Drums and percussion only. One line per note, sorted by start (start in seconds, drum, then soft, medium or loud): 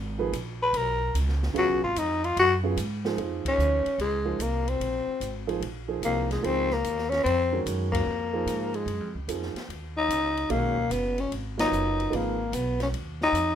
0.33 hi-hat pedal soft
0.33 ride medium
0.74 ride medium
1.15 hi-hat pedal soft
1.15 ride medium
1.29 snare soft
1.43 snare soft
1.56 ride medium
1.96 hi-hat pedal medium
1.96 ride medium
2.24 ride soft
2.37 ride medium
2.77 hi-hat pedal medium
2.77 ride medium
3.05 snare medium
3.18 ride medium
3.45 kick medium
3.45 ride medium
3.59 hi-hat pedal medium
3.86 ride soft
3.99 ride medium
4.40 hi-hat pedal medium
4.40 ride medium
4.68 ride soft
4.81 ride medium
5.21 hi-hat pedal medium
5.21 ride medium
5.49 ride soft
5.62 ride medium
6.03 hi-hat pedal medium
6.03 ride medium
6.31 snare soft
6.31 ride soft
6.44 ride medium
6.70 snare soft
6.84 hi-hat pedal medium
6.84 ride medium
6.98 snare soft
7.12 snare soft
7.12 ride soft
7.26 ride medium
7.66 hi-hat pedal medium
7.66 ride medium
7.93 kick medium
7.93 ride medium
8.47 hi-hat pedal soft
8.47 ride medium
8.74 ride soft
8.88 ride soft
9.29 hi-hat pedal medium
9.29 ride medium
9.42 snare soft
9.56 snare soft
9.56 ride soft
9.70 ride soft
10.10 hi-hat pedal medium
10.10 ride medium
10.37 ride soft
10.50 ride medium
10.77 kick soft
10.91 hi-hat pedal medium
10.91 ride medium
11.18 ride soft
11.32 ride medium
11.59 snare medium
11.59 ride medium
11.73 hi-hat pedal medium
12.00 ride soft
12.13 ride medium
12.53 hi-hat pedal medium
12.53 ride medium
12.80 snare soft
12.80 ride soft
12.94 ride soft
13.21 snare soft
13.35 hi-hat pedal medium
13.35 ride medium